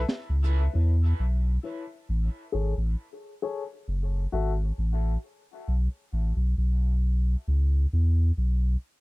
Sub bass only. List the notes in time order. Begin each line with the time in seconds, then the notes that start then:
0.29 C#2
0.75 E2
1.20 B1
2.09 A1
2.54 G#1
2.77 A1
3.88 F#1
4.33 G#1
4.78 A1
5.68 B1
6.13 A1
6.36 B1
6.58 B1
7.48 C#2
7.93 E2
8.38 B1